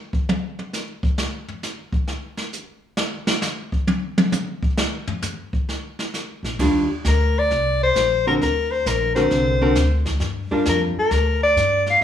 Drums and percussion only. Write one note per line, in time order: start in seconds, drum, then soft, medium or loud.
0.13 kick medium
0.29 high tom loud
0.59 high tom soft
0.73 snare soft
0.73 hi-hat pedal medium
1.03 kick medium
1.18 snare medium
1.48 floor tom soft
1.63 snare soft
1.63 hi-hat pedal medium
1.93 kick medium
2.08 snare soft
2.37 snare medium
2.53 hi-hat pedal medium
2.97 snare loud
3.27 snare medium
3.42 snare loud
3.42 hi-hat pedal medium
3.72 kick medium
3.87 high tom medium
4.18 high tom loud
4.32 hi-hat pedal medium
4.32 high tom medium
4.63 kick medium
4.77 snare loud
5.07 floor tom medium
5.22 floor tom loud
5.22 hi-hat pedal medium
5.53 kick medium
5.69 snare soft
5.99 snare soft
6.14 snare soft
6.14 hi-hat pedal medium
6.44 snare soft
6.59 brush sweep soft
6.59 kick medium
6.59 snare soft
6.59 crash medium
7.05 kick soft
7.05 snare medium
7.05 hi-hat pedal soft
7.50 brush sweep soft
7.50 kick soft
7.50 snare soft
7.95 kick soft
7.95 snare medium
7.95 hi-hat pedal medium
8.41 brush sweep soft
8.41 kick soft
8.41 snare soft
8.86 kick soft
8.86 snare medium
8.86 hi-hat pedal medium
9.16 snare soft
9.31 brush sweep soft
9.31 kick soft
9.31 snare soft
9.75 kick soft
9.75 snare medium
9.75 hi-hat pedal medium
10.05 kick soft
10.05 snare soft
10.20 brush sweep soft
10.20 snare soft
10.65 kick soft
10.65 snare medium
10.65 hi-hat pedal soft
11.11 brush sweep soft
11.11 kick soft
11.11 snare soft
11.56 kick soft
11.56 snare soft
11.56 hi-hat pedal soft
11.86 snare soft